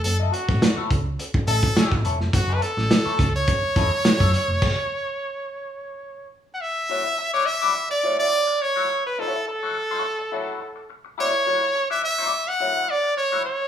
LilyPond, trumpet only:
\new Staff \with { instrumentName = "Trumpet" } { \time 4/4 \key d \lydian \tempo 4 = 105 a'8 fis'4 r4 a'4 r8 | fis'16. b'32 a'4~ a'16 cis''2~ cis''16~ | cis''2. r16. fis''32 e''8~ | e''8. cis''16 e''8. d''8 d''8. cis''8. b'16 |
a'8 a'2~ a'8 r8 cis''8~ | cis''8. e''16 e''8. fis''8. d''8 cis''8 cis''8 | }